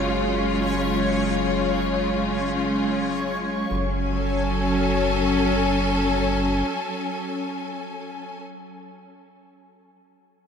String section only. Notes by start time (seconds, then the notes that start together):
Already playing: C#3 G#3 C#4 F4
3.70 F#3
3.84 C#4
3.97 G#5
4.13 A4